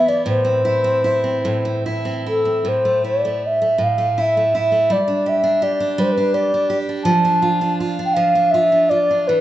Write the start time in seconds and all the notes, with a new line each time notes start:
Already playing: E3 E4 E5
0.08 B3 D5
0.26 A2 C5
0.45 C4
0.65 E4
0.84 C4
1.04 E4
1.24 C4
1.45 A2
1.65 C4
1.86 E4
2.05 C4
2.26 E4 A4
2.45 C4
2.65 A2 C5
2.85 A3
3.04 E4 D5
3.25 A3
3.47 E5
3.62 A3
3.78 A2
3.83 F5
3.98 A3
4.18 E4 E5
4.37 A3
4.55 E4 E5
4.72 A3
4.90 G3 D5
5.08 D4
5.26 G4 E5
5.44 D4
5.62 G4 D5
5.80 D4
5.98 G3 B4
6.03 C5
6.12 B4
6.17 D4
6.34 G4 D5
6.54 D4
6.70 G4
6.89 D4
7.04 F3 A5
7.25 D4
7.42 F4
7.61 D4
7.80 F4
7.99 D4
8.05 G5
8.14 F3 F5
8.35 D4
8.51 F4 E5
8.72 D4
8.90 F4 D5
9.11 D4
9.28 E3 B4